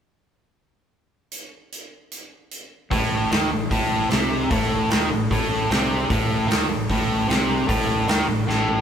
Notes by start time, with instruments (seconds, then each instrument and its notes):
1.32 closed hi-hat
1.72 closed hi-hat
2.12 closed hi-hat
2.51 closed hi-hat
2.91 fingered electric bass A1, distorted electric guitar A2, kick, open hi-hat
3.04 snare
3.31 fingered electric bass D#2, distorted electric guitar D#3, snare, open hi-hat
3.51 fingered electric bass A1, distorted electric guitar A2
3.71 fingered electric bass A1, distorted electric guitar A2, kick, open hi-hat
4.10 fingered electric bass C2, distorted electric guitar C3, snare, open hi-hat
4.51 fingered electric bass A1, distorted electric guitar A2, kick, open hi-hat
4.62 snare
4.90 fingered electric bass D#2, distorted electric guitar D#3, snare, open hi-hat
5.11 fingered electric bass A1, distorted electric guitar A2
5.31 fingered electric bass A1, distorted electric guitar A2, kick, open hi-hat
5.70 fingered electric bass C2, distorted electric guitar C3, snare, open hi-hat
6.10 fingered electric bass A1, distorted electric guitar A2, kick, open hi-hat
6.49 fingered electric bass D#2, distorted electric guitar D#3, snare, open hi-hat
6.69 fingered electric bass A1, distorted electric guitar A2
6.90 fingered electric bass A1, distorted electric guitar A2, kick, open hi-hat
7.28 fingered electric bass C2, distorted electric guitar C3, snare, open hi-hat
7.68 fingered electric bass A1, distorted electric guitar A2, kick, open hi-hat
7.81 snare
8.08 fingered electric bass D#2, distorted electric guitar D#3, snare, open hi-hat
8.28 fingered electric bass A1, distorted electric guitar A2
8.47 fingered electric bass A1, distorted electric guitar A2, snare
8.68 mid tom